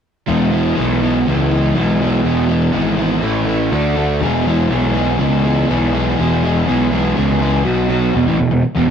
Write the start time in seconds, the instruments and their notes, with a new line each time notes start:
0.27 picked electric bass E1, overdriven electric guitar E3 G#3 B3 E4
0.51 overdriven electric guitar E3 G#3 B3 E4
0.75 picked electric bass B1, overdriven electric guitar E3 G#3 B3 E4
1.02 overdriven electric guitar E3 G#3 B3 E4
1.26 picked electric bass C#2, overdriven electric guitar E3 G#3 B3 E4
1.51 overdriven electric guitar E3 G#3 B3 E4
1.74 picked electric bass B1, overdriven electric guitar E3 G#3 B3 E4
2.00 overdriven electric guitar E3 G#3 B3 E4
2.24 picked electric bass E1, overdriven electric guitar E3 G#3 B3 E4
2.48 overdriven electric guitar E3 G#3 B3 E4
2.72 picked electric bass G#1, overdriven electric guitar E3 G#3 B3 E4
2.97 overdriven electric guitar E3 G#3 B3 E4
3.20 picked electric bass A1, overdriven electric guitar A2 E3 A3 E4
3.45 overdriven electric guitar A2 E3 A3 E4
3.71 picked electric bass D2, overdriven electric guitar D3 A3 D4 A4
3.96 overdriven electric guitar D3 A3 D4 A4
4.21 picked electric bass E1, overdriven electric guitar E3 G#3 B3 E4 G#4
4.46 overdriven electric guitar E3 G#3 B3 E4 G#4
4.70 picked electric bass B1, overdriven electric guitar E3 G#3 B3 E4 G#4
4.95 overdriven electric guitar E3 G#3 B3 E4 G#4
5.18 picked electric bass C#2, overdriven electric guitar E3 G#3 B3 E4 G#4
5.45 overdriven electric guitar E3 G#3 B3 E4 G#4
5.69 picked electric bass B1, overdriven electric guitar E3 G#3 B3 E4 G#4
5.93 overdriven electric guitar E3 G#3 B3 E4 G#4
6.18 picked electric bass E1, overdriven electric guitar E3 G#3 B3 E4 G#4
6.43 overdriven electric guitar E3 G#3 B3 E4 G#4
6.66 picked electric bass B1, overdriven electric guitar E3 G#3 B3 E4 G#4
6.91 overdriven electric guitar E3 G#3 B3 E4 G#4
7.16 picked electric bass C#2, overdriven electric guitar E3 G#3 B3 E4 G#4
7.40 overdriven electric guitar E3 G#3 B3 E4 G#4
7.65 picked electric bass B1, overdriven electric guitar B2 F#3 B3 F#4
7.88 overdriven electric guitar B2 F#3 B3 F#4
8.14 picked electric bass E1, overdriven electric guitar E2 B2
8.26 picked electric bass A1, overdriven electric guitar A2 E3
8.38 picked electric bass E1, overdriven electric guitar E2 B2
8.50 picked electric bass E1, overdriven electric guitar E2 B2
8.63 muted overdriven electric guitar stroke, muted picked electric bass stroke
8.75 picked electric bass E1, overdriven electric guitar E2 B2